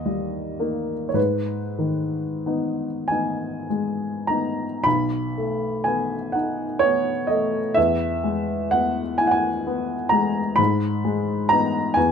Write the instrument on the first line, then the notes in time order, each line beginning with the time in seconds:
grand piano
Already playing: D#2 D#5
0.06 G3
0.60 A#3 D#4
1.09 C#5
1.14 G#2 B4
1.79 D#3
2.46 B3 D#4
3.08 B3 D#4 G#5
3.70 G#3
4.27 B3 D#4 A#5
4.84 B1 B5
5.37 A3
5.84 B3 G#5
6.32 D#4 F#5
6.79 B3 C#5
7.27 A3 D#5
7.74 E2 E5
8.24 G#3
8.71 B3 F#5
9.18 E4 G#5
9.27 F#5
9.31 G#5
9.67 B3
10.09 G#3 A#5
10.56 G#2 B5
11.04 G#3
11.49 B3 D#4 A#5
11.94 E2 G#5